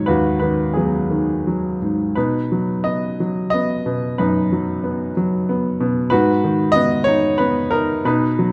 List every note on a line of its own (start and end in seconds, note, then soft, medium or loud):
0.00 1.82 G#2 medium
0.00 0.41 D#3 soft
0.00 0.77 F#3 soft
0.00 0.06 B4 medium
0.00 2.17 C#5 medium
0.00 2.18 D#5 medium
0.00 2.18 F#5 medium
0.06 2.12 D#2 soft
0.06 1.06 F#4 soft
0.06 0.38 B4 medium
0.39 1.09 D#3 soft
0.39 0.75 B4 medium
0.74 1.46 F#3 soft
0.74 1.77 B3 soft
0.74 1.76 G#4 soft
1.10 2.13 D#3 soft
1.47 2.15 F#3 soft
1.82 2.15 G#2 soft
2.15 3.84 B2 soft
2.15 3.15 D#4 soft
2.15 2.81 B4 medium
2.52 3.19 F#3 soft
2.84 3.53 B3 soft
2.84 3.49 D#5 medium
3.20 4.48 F#3 soft
3.50 4.81 B3 soft
3.50 4.14 D#5 medium
3.86 5.12 B2 soft
4.18 6.07 F#2 soft
4.18 5.12 D#4 soft
4.18 5.12 B4 medium
4.52 5.15 F#3 soft
4.84 5.48 B3 soft
5.17 6.08 F#3 soft
5.49 6.10 B3 soft
5.80 6.10 B2 medium
6.10 8.01 G#2 medium
6.10 7.02 F#4 medium
6.10 6.75 B4 medium
6.44 7.68 D#3 soft
6.72 7.39 B3 medium
6.72 7.02 D#5 medium
7.04 7.70 D#4 medium
7.04 7.38 C#5 medium
7.38 8.03 B3 medium
7.38 7.72 B4 medium
7.71 8.04 D#4 medium
7.71 8.02 A#4 medium
8.05 8.52 B2 medium
8.05 8.52 D#4 medium
8.05 8.52 B4 medium
8.39 8.52 F#3 medium